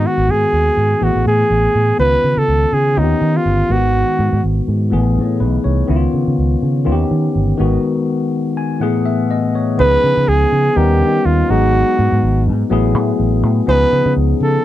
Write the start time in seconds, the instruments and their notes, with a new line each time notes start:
Already playing: tine electric piano D#3 G#3 B3 F#4
0.07 flugelhorn F#4
0.18 fingered electric bass G#1
0.28 fingered electric bass G#2, flugelhorn G#4
0.53 fingered electric bass D#2
0.77 fingered electric bass G#2
0.99 fingered electric bass A1, tine electric piano E3 A3 B3 G#4
1.03 flugelhorn F#4
1.16 fingered electric bass A1
1.26 fingered electric bass A2, flugelhorn G#4
1.50 fingered electric bass A1
1.75 fingered electric bass A2
1.97 fingered electric bass C#2, tine electric piano D#3 B3 C#4 F4, flugelhorn B4
2.24 fingered electric bass C#3
2.37 fingered electric bass C#3, flugelhorn A4
2.48 fingered electric bass C#2
2.73 fingered electric bass C#3, flugelhorn G#4
2.96 fingered electric bass D#2, tine electric piano D#3 B3 C#4 F4, flugelhorn D#4
3.03 tine electric piano G4
3.21 fingered electric bass D#3
3.37 flugelhorn F4
3.45 fingered electric bass G1
3.68 fingered electric bass G#1, tine electric piano D#3 G#3 B3 F4, flugelhorn F#4
3.77 tine electric piano F#4
4.19 fingered electric bass G#2
4.33 fingered electric bass G#2
4.44 fingered electric bass G#1
4.68 fingered electric bass G#2
4.90 fingered electric bass A1, tine electric piano E3 A3 B3 G#4
5.17 fingered electric bass A2
5.40 fingered electric bass B1, tine electric piano D#4 B4
5.64 fingered electric bass C2, tine electric piano E4 C#5
5.87 fingered electric bass C#2, tine electric piano D#3 B3 C#4 E4
5.96 tine electric piano F4
6.14 fingered electric bass C#3
6.28 fingered electric bass C#3
6.38 fingered electric bass C#2
6.63 fingered electric bass C#3
6.85 fingered electric bass D#2, tine electric piano D#3 B3 C#4 F4
6.92 tine electric piano G4
7.11 fingered electric bass D#3
7.35 fingered electric bass G1
7.57 fingered electric bass G#1, tine electric piano D#3 G#3 B3 F#4
8.57 tine electric piano G#5
8.80 tine electric piano A2 E3 A3 B3 G#4 F#5
9.05 tine electric piano E5
9.31 tine electric piano D#5
9.55 tine electric piano C#5
9.77 fingered electric bass C#2, tine electric piano D#3 B3 C#4 D#4 G#4, flugelhorn B4
9.82 tine electric piano F3
10.04 fingered electric bass C#3
10.17 fingered electric bass C#3
10.28 fingered electric bass C#2, flugelhorn G#4
10.52 fingered electric bass C#3
10.75 fingered electric bass D#2, tine electric piano G3 B3 C#4 D#4 A#4, flugelhorn G4
11.01 fingered electric bass D#3
11.25 fingered electric bass D#2, flugelhorn F4
11.48 fingered electric bass G#1, tine electric piano F#3 G#3 B3 D#4 G#4, flugelhorn F#4
11.99 fingered electric bass G#2
12.12 fingered electric bass G#2
12.23 fingered electric bass G#1
12.47 fingered electric bass G#2
12.70 fingered electric bass A1, tine electric piano F#3 A3 B3 E4 G#4
12.95 fingered electric bass A2
13.20 fingered electric bass A1
13.44 fingered electric bass A2
13.66 fingered electric bass C#2, tine electric piano F3 B3 C#4 D#4 G#4, flugelhorn B4
13.92 fingered electric bass C#3
14.06 fingered electric bass C#3
14.17 fingered electric bass C#2
14.41 fingered electric bass C#3, flugelhorn A4